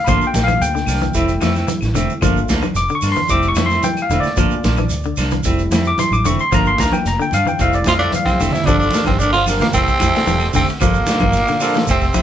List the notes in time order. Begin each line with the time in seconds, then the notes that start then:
0.04 G1 F3 A3 A#3 D4 B5, kick, closed hi-hat, high conga, low conga, claves, shekere
0.09 F4 C6
0.21 muted fingered electric bass stroke, shekere
0.27 G5
0.34 A#1 F3 A#3, muted clean electric guitar stroke, kick, snare, closed hi-hat, high conga, shekere
0.44 F5, claves
0.48 E3, closed hi-hat, high conga, shekere
0.61 D2 G5, closed hi-hat, high conga, shekere
0.75 D3, snare, shekere
0.86 C2 F3 A#3 D4, open hi-hat, high conga, claves, shekere
1.01 E3, closed hi-hat, low conga, shekere
1.14 F1 E3 G3 A3 C4 E4, kick, closed hi-hat, high conga, shekere
1.28 closed hi-hat, shekere
1.40 F2 E3 F3 A3 C4, snare, closed hi-hat, high conga, claves, shekere
1.54 A3 C4, snare, closed hi-hat, shekere
1.68 E3, closed hi-hat, high conga, shekere
1.81 A1, snare, high conga, claves, shekere
1.94 F1 D3 E3 A3 C4, closed hi-hat, low conga, shekere
2.10 shekere
2.21 G1 F3 A3 A#3 D4 F4, kick, closed hi-hat, high conga, low conga, claves, shekere
2.36 shekere
2.49 D2 F3 A#3 D4, kick, snare, closed hi-hat, high conga, shekere
2.62 E3, muted fingered electric bass stroke, high conga, claves, shekere
2.75 F1 D6, closed hi-hat, high conga, shekere
2.89 D3, shekere
2.95 C#6
3.02 G2 F3 A#3 D4, open hi-hat, claves, shekere
3.12 C6, shekere
3.17 E3, low conga
3.29 F1 G3 A3 C4 E4 D6, muted clean electric guitar stroke, kick, closed hi-hat, high conga, shekere
3.42 closed hi-hat, shekere
3.48 C#6
3.55 F2 E3 F3 A3 C4, snare, closed hi-hat, high conga, claves, shekere
3.66 C6, closed hi-hat
3.70 A3 C4, snare, shekere
3.83 E3 G5, closed hi-hat, high conga, shekere
3.97 closed hi-hat, claves, shekere
4.02 F5
4.09 E1 D3 E3 A3 C4, closed hi-hat, low conga, shekere
4.20 D5, shekere
4.26 snare
4.36 G1 F3 A3 A#3 D4 F4, kick, closed hi-hat, high conga, low conga, claves, shekere
4.50 muted fingered electric bass stroke, shekere
4.64 A#1 F3 A#3 D4, kick, snare, closed hi-hat, high conga, shekere
4.77 E3, closed hi-hat, high conga, claves, shekere
4.90 D2, closed hi-hat, high conga, shekere
5.03 D3, shekere
5.17 C2 F3 A#3 D4, snare, open hi-hat, high conga, claves, shekere
5.31 E3, closed hi-hat, low conga, shekere
5.44 F1 G3 A3 C4 E4, muted clean electric guitar stroke, kick, closed hi-hat, high conga, shekere
5.58 closed hi-hat, shekere
5.71 F2 E3 F3 A3 C4, snare, closed hi-hat, high conga, claves, shekere
5.85 D6, closed hi-hat, shekere
5.98 E3 C6, closed hi-hat, high conga, shekere
6.11 A1 D6, high conga, claves, shekere
6.25 F1 D3 E3 A3 C4 C#6, closed hi-hat, low conga, shekere
6.39 C6, shekere
6.52 G1 F3 A3 A#3 D4 F4 A#5, kick, closed hi-hat, high conga, low conga, claves, shekere
6.65 C6, shekere
6.78 D2 F3 A#3 D4 A#5, kick, snare, closed hi-hat, high conga, shekere
6.91 E3 G5, muted fingered electric bass stroke, high conga, claves, shekere
7.04 F1 A#5, snare, closed hi-hat, high conga, shekere
7.20 D3 G5, shekere
7.31 G2 F3 D4 F5, closed hi-hat, high conga, claves, shekere
7.45 E3 G5, low conga, shekere
7.58 F1 G3 A3 C4 E4 F5, muted clean electric guitar stroke, kick, closed hi-hat, high conga, shekere
7.73 D5, closed hi-hat, shekere
7.84 F2 E3 F3 A3 C4 F4 F5, kick, snare, closed hi-hat, high conga, claves, shekere
7.89 F3
7.99 D3 A3 C4 D4 D5, closed hi-hat, shekere
8.12 E3 F5, closed hi-hat, high conga, shekere
8.25 C3 C4, kick, snare, closed hi-hat, high conga, claves, shekere
8.34 high conga
8.40 E1 D3 E3 A3 C4, open hi-hat, shekere
8.51 E3 E4, muted fingered electric bass stroke, snare, low conga, shekere
8.64 G1 F3 G3 C4 D4 F4, muted clean electric guitar stroke, kick, ride bell, high conga, low conga, claves, shekere
8.68 D3 A4
8.79 D4, shekere
8.83 D3
8.91 F3 A#3 D4, ride bell, high conga, shekere
8.95 snare
9.05 G1 E3 C4, kick, snare, ride bell, high conga, claves, shekere
9.10 C3
9.19 D3 F3 A#3 D4, ride bell, high conga, shekere
9.32 D3 F3 F4, shekere
9.46 F3 G3 A#3 C4 D4 F4 A#4, open hi-hat, high conga, claves, shekere
9.60 E3 A#3, snare, ride bell, low conga, shekere
9.64 A#2
9.73 F1 E3 A3 C4, kick, ride bell, high conga, shekere
9.77 C3
9.87 kick, shekere
9.99 F2 E3 F3 A3 C4, kick, ride bell, high conga, claves, shekere
10.04 snare
10.14 G3 C4 F4 A4, snare, ride bell, shekere
10.27 E1 E3, snare, ride bell, high conga, shekere
10.40 snare, claves, shekere
10.53 F1 C3 D3 A3 C4, muted clean electric guitar stroke, kick, open hi-hat, low conga, shekere
10.68 ride bell, shekere
10.80 G1 F3 G3 A#3 C4 F4 A4, muted clean electric guitar stroke, kick, ride bell, high conga, low conga, claves, shekere
10.85 A#2
10.94 shekere
11.07 F3 A#3 D4, muted fingered electric bass stroke, snare, ride bell, high conga, shekere
11.19 G1 E3, kick, high conga, claves, shekere
11.33 high conga, shekere
11.37 snare, ride bell
11.47 D3, snare, shekere
11.60 F3 G3 A#3 C4 D4 F4 A4, open hi-hat, claves, shekere
11.74 E3, snare, ride bell, shekere
11.87 F1 C3 A3 C4, muted clean electric guitar stroke, kick, ride bell, high conga, shekere
12.01 kick, snare, shekere
12.14 E3 F3 A3, muted clean electric guitar stroke, kick, ride bell, high conga, claves, shekere